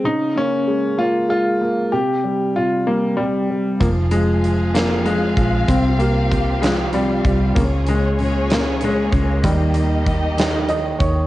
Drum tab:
HH |------|------|xxxxxx|xxxxxx|
SD |------|------|---o--|---o--|
BD |------|------|o----o|o-o--o|

HH |xxxxxx|xxxxxx|
SD |---o--|---o--|
BD |o----o|o-o--o|